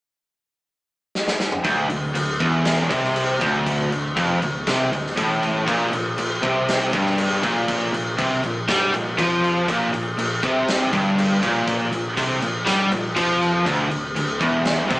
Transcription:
1.15 snare medium
1.28 snare medium
1.40 snare medium
1.52 mid tom medium
1.64 1.88 D1 loud
1.64 1.89 D2 loud
1.64 kick medium
1.64 crash medium
1.90 2.14 D1 medium
1.90 2.11 D2 medium
1.90 crash medium
2.15 2.39 D1 medium
2.15 2.36 D2 medium
2.15 crash medium
2.40 2.88 E1 medium
2.40 2.90 E2 medium
2.40 kick loud
2.40 crash medium
2.65 snare loud
2.65 crash medium
2.90 3.38 C2 medium
2.90 3.40 C3 loud
2.90 kick loud
2.90 crash medium
3.04 snare soft
3.16 crash medium
3.41 3.89 D1 medium
3.41 3.91 D2 medium
3.41 kick loud
3.41 crash medium
3.66 kick medium
3.66 crash medium
3.92 4.16 D1 medium
3.92 4.13 D2 medium
3.92 crash medium
4.17 4.40 F1 medium
4.17 4.42 F2 loud
4.17 kick loud
4.17 crash medium
4.42 4.66 D1 medium
4.42 4.63 D2 medium
4.42 crash medium
4.67 4.90 C2 medium
4.67 4.92 C3 loud
4.67 kick loud
4.67 snare loud
4.67 crash medium
4.92 5.16 D1 medium
4.92 5.13 D2 medium
4.92 crash medium
5.07 snare soft
5.17 5.65 A1 medium
5.17 5.66 A2 loud
5.17 kick loud
5.17 crash medium
5.43 crash medium
5.67 5.91 A#1 loud
5.67 5.91 A#2 loud
5.67 kick loud
5.67 crash medium
5.93 6.17 A#1 medium
5.93 6.13 A#2 medium
5.93 crash medium
6.18 6.41 A#1 medium
6.18 6.38 A#2 medium
6.18 crash medium
6.43 6.90 C2 medium
6.43 6.93 C3 loud
6.43 kick loud
6.43 crash medium
6.68 snare loud
6.68 crash medium
6.93 7.40 G1 medium
6.93 7.44 G2 loud
6.93 kick loud
6.93 crash medium
7.06 snare soft
7.18 crash medium
7.43 7.90 A#1 medium
7.43 7.93 A#2 medium
7.43 kick loud
7.43 crash medium
7.68 kick medium
7.68 crash medium
7.94 8.17 A#1 medium
7.94 8.14 A#2 medium
7.94 crash medium
8.19 8.42 C2 medium
8.19 8.44 C3 loud
8.19 kick loud
8.19 crash medium
8.44 8.68 A#1 medium
8.44 8.64 A#2 medium
8.44 crash medium
8.68 8.92 G2 medium
8.68 8.93 G3 loud
8.68 kick loud
8.68 snare loud
8.68 crash medium
8.94 9.18 A#1 medium
8.94 9.14 A#2 medium
8.94 crash medium
9.19 9.65 F2 medium
9.19 9.68 F3 loud
9.19 kick loud
9.19 crash medium
9.44 crash medium
9.68 9.92 A#1 medium
9.68 9.93 A#2 loud
9.68 kick medium
9.68 crash medium
9.94 10.17 A#1 medium
9.94 10.14 A#2 medium
9.94 crash medium
10.17 10.41 A#1 medium
10.17 10.39 A#2 medium
10.17 crash medium
10.43 10.90 C2 medium
10.43 10.93 C3 medium
10.43 kick loud
10.43 crash medium
10.68 snare loud
10.68 crash medium
10.93 11.39 G1 medium
10.93 11.42 G2 medium
10.93 kick loud
10.93 crash medium
11.18 crash medium
11.43 11.89 A#1 medium
11.43 11.92 A#2 loud
11.43 kick loud
11.43 crash medium
11.67 kick medium
11.67 crash medium
11.92 12.15 A#1 medium
11.92 12.13 A#2 medium
11.92 crash medium
12.17 12.41 C2 medium
12.17 12.42 C3 loud
12.17 kick loud
12.17 crash medium
12.42 12.65 A#1 medium
12.42 12.63 A#2 medium
12.42 crash medium
12.67 12.90 G2 medium
12.67 12.91 G3 loud
12.67 kick loud
12.67 snare loud
12.67 crash medium
12.92 13.15 A#1 medium
12.92 13.12 A#2 medium
12.92 crash medium
13.17 13.63 F2 medium
13.17 13.66 F3 medium
13.17 kick loud
13.17 crash medium
13.42 crash medium
13.66 13.90 D1 loud
13.66 13.90 D2 loud
13.66 kick medium
13.66 crash medium
13.91 14.15 D1 medium
13.91 14.11 D2 medium
13.91 crash medium
14.15 14.40 D1 medium
14.15 14.36 D2 medium
14.15 crash medium
14.40 14.87 E1 medium
14.40 14.91 E2 loud
14.40 kick loud
14.40 crash medium
14.65 snare loud
14.65 crash medium
14.90 15.00 C2 medium
14.90 15.00 C3 loud
14.90 kick loud
14.90 crash medium

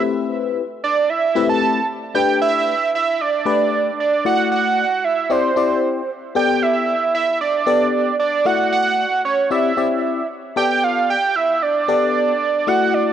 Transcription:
0.00 0.62 A3 medium
0.00 0.62 C4 medium
0.00 0.62 E4 medium
0.00 0.62 G4 medium
0.00 0.62 B4 medium
0.84 1.11 D5 medium
1.10 1.49 E5 medium
1.35 1.80 A3 medium
1.35 1.80 C4 medium
1.35 1.80 E4 medium
1.35 1.80 G4 medium
1.35 1.80 B4 medium
1.49 1.86 A5 loud
2.14 2.74 A3 medium
2.14 2.74 D4 medium
2.14 2.74 G4 medium
2.14 2.74 B4 medium
2.14 2.39 G5 loud
2.42 2.90 E5 loud
2.95 3.23 E5 loud
3.21 3.99 D5 loud
3.45 3.90 A3 medium
3.45 3.91 D4 medium
3.45 3.91 G4 medium
3.45 3.91 B4 medium
4.00 4.24 D5 medium
4.25 4.85 A3 medium
4.25 4.85 E4 medium
4.25 4.85 F#4 medium
4.25 4.85 D5 medium
4.25 4.50 F#5 loud
4.51 5.06 F#5 loud
5.04 5.33 E5 loud
5.30 5.51 C4 medium
5.30 5.51 E4 medium
5.30 5.51 G4 medium
5.30 6.10 C5 medium
5.30 5.52 D5 medium
5.56 6.01 C4 medium
5.56 6.01 E4 medium
5.56 6.01 G4 medium
5.56 6.02 D5 medium
6.35 6.95 B3 medium
6.35 6.95 G4 medium
6.35 6.95 A4 medium
6.35 6.95 D5 medium
6.35 6.64 G5 loud
6.63 7.14 E5 loud
7.15 7.39 E5 loud
7.41 8.16 D5 medium
7.67 8.12 B3 medium
7.67 8.12 G4 medium
7.67 8.12 A4 medium
7.67 8.12 D5 medium
8.20 8.47 D5 medium
8.45 9.05 A3 medium
8.45 9.05 E4 medium
8.45 9.06 F#4 medium
8.45 9.06 D5 medium
8.45 8.72 F#5 loud
8.73 9.21 F#5 loud
9.25 9.50 C#5 medium
9.50 9.72 C4 medium
9.50 9.72 E4 medium
9.50 9.72 G4 medium
9.50 9.72 D5 medium
9.50 10.26 E5 medium
9.77 10.22 C4 medium
9.77 10.22 E4 medium
9.77 10.22 G4 medium
9.77 10.22 D5 medium
10.56 11.16 B3 medium
10.56 11.16 G4 medium
10.56 11.16 A4 medium
10.56 11.16 D5 medium
10.56 10.85 G5 loud
10.84 11.09 F5 loud
11.10 11.37 G5 loud
11.36 11.64 E5 loud
11.62 12.69 D5 loud
11.88 12.33 B3 medium
11.88 12.33 G4 medium
11.88 12.33 A4 medium
11.88 12.33 D5 medium
12.67 13.13 A3 medium
12.67 13.13 E4 medium
12.67 13.13 F#4 medium
12.67 13.13 D5 medium
12.67 12.96 F#5 loud
12.94 13.13 D5 loud

